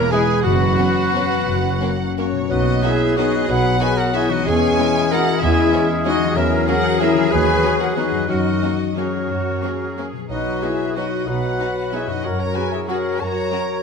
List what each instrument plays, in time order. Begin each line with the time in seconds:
Already playing: harp E2 B3 E4 G#4 G#5, cello section A#3, oboe A#4, viola section A#4, trumpet A#4, flute C#5, violin section A#5
0.03 harp E5
0.11 cello section G#3, french horn section G#3 E4, violin section G#3 E4 G#5, viola section G#4, oboe G#4, clarinet G#4, trumpet G#4, flute B4
0.20 harp G#4
0.27 harp E4
0.36 harp B3
0.44 double bass section F#1, harp F#2, cello section F#3, viola section F#4, oboe F#4, clarinet F#4, trumpet F#4, flute B4, violin section F#5
0.52 harp B3
0.60 harp C#4
0.68 harp F#4
0.78 violin section B3 C#4, french horn section B3 C#4
0.86 harp C#5
1.05 harp C#5
1.13 violin section B3 C#4, french horn section B3 C#4, harp B4
1.23 harp F#4
1.31 harp C#4
1.39 harp B3
1.47 double bass section F#1, harp F#2
1.55 harp A#3
1.64 harp C#4
1.72 harp F#4
1.81 violin section A#3 C#4, french horn section A#3 C#4, harp A#4
1.90 harp C#5
2.08 harp C#5
2.17 french horn section A#3 C#4, violin section A#3 C#4 C#5, flute F#4, harp A#4
2.26 harp F#4
2.32 harp B2 C#4
2.37 harp B3
2.41 harp A#3 D#4
2.46 harp F#4
2.50 double bass section B1, bassoon F#3, clarinet B3, french horn section D#4, flute F#4, oboe B4, violin section D#5
2.82 viola section D#3 B3, violin section D#4 F#4 E5, french horn section E4, flute G#4, cello section G#4
3.17 viola section D#3 B3, bassoon F#3, clarinet B3, french horn section D#4, violin section D#4 F#4 D#5, flute F#4, oboe B4
3.48 double bass section B1, bassoon F#3, clarinet B3, french horn section F#4, flute B4, oboe B4, violin section F#5
3.80 viola section D#3 B3, violin section D#4 F#4 G#5, cello section F#4, french horn section G#4, flute B4
3.97 french horn section F#4, flute A#4, violin section F#5
4.13 viola section D#3 B3, violin section D#4 F#4 E5, french horn section E4, cello section F#4, flute G#4
4.28 harp E3, french horn section D#4, flute F#4, violin section D#5
4.33 harp G#3
4.37 harp C#4
4.42 harp G#4
4.47 double bass section E2, bassoon G#3, clarinet C#4, cello section G#4, french horn section G#4, oboe G#4, flute C#5, violin section G#5
4.79 viola section E3 G#3, violin section C#4, cello section E4
5.11 viola section E3 G#3, violin section C#4 F#5, french horn section F#4, flute A#4
5.42 double bass section E2, bassoon G#3, clarinet C#4, french horn section E4, flute G#4, oboe G#4, violin section E5
5.72 viola section E3 G#3, violin section C#4
6.05 viola section E3 G#3, violin section C#4 D#5, french horn section D#4, flute F#4
6.18 harp E3
6.23 harp F#3
6.27 harp C#4
6.32 cello section G#4, harp A#4
6.36 double bass section E2, bassoon F#3, clarinet C#4, french horn section E4, flute A#4, oboe A#4, violin section E5
6.68 bassoon F#3, viola section F#3, violin section A#3 C#4 F#5, clarinet C#4, french horn section F#4, oboe A#4, flute A#4
7.01 bassoon F#3, viola section F#3, violin section A#3 C#4 E5, clarinet C#4, french horn section E4, oboe A#4, flute A#4
7.14 harp D#3
7.18 harp F#3
7.31 double bass section D#2, bassoon F#3, clarinet F#4, french horn section G#4, oboe B4, flute B4, violin section G#5
7.63 viola section F#3, violin section B3 D#4
7.80 french horn section F#4, flute A#4, violin section F#5
7.96 bassoon F#3, viola section F#3, violin section B3 D#4 D#5, french horn section D#4, clarinet F#4, flute F#4, oboe B4
8.11 harp F#2
8.15 harp F#3
8.20 harp F#4
8.24 harp A#4, violin section D#5
8.29 double bass section F#2, bassoon F#3, french horn section D#4, clarinet F#4, flute F#4, cello section F#4, oboe A#4
8.62 viola section F#3, violin section A#3 C#4, cello section F#4
8.97 viola section F#3, bassoon F#3, violin section A#3 C#4 C#5, french horn section C#4, clarinet F#4, flute F#4, cello section G#4, oboe A#4
9.29 double bass section F#2, cello section F#4
9.62 viola section F#3, violin section A#3 C#4, cello section G#4
9.97 viola section F#3, violin section A#3 C#4
10.12 harp B2
10.17 harp F#3
10.21 harp F#4
10.26 double bass section B1, bassoon F#3, cello section D#4, flute F#4, clarinet F#4, harp B4
10.30 french horn section D#4, oboe B4, violin section D#5
10.62 viola section F#3, violin section B3 D#4 E5, french horn section E4, cello section G#4, flute G#4
10.96 viola section F#3, bassoon F#3, violin section B3 D#4 D#5, french horn section D#4, clarinet F#4, cello section F#4, flute F#4, oboe B4
11.27 double bass section B1, bassoon F#3, cello section D#4, clarinet F#4, french horn section F#4, oboe B4, flute B4, violin section F#5
11.59 viola section F#3, violin section B3 D#4, cello section F#4
11.93 viola section F#3, violin section B3 D#4 E5, french horn section E4, flute G#4
12.06 harp F#2, french horn section D#4, flute F#4, violin section D#5
12.11 harp F#3
12.16 harp F#4
12.23 double bass section F#2, bassoon F#3, clarinet F#4, french horn section F#4, cello section A#4, flute A#4, oboe C#5, violin section F#5
12.39 french horn section A#4, flute C#5, violin section A#5
12.55 viola section F#3, violin section C#4 F#4 G#5, french horn section G#4, flute B4
12.72 french horn section E4, flute G#4, violin section E5
12.87 viola section F#3, bassoon F#3, violin section C#4 F#4 F#5, french horn section F#4, clarinet F#4, cello section G#4, flute A#4, oboe C#5
13.20 double bass section F#2, bassoon F#3, clarinet F#4, cello section F#4, french horn section A#4, oboe C#5, flute C#5, violin section A#5
13.51 viola section F#3, violin section C#4 F#4, cello section A#4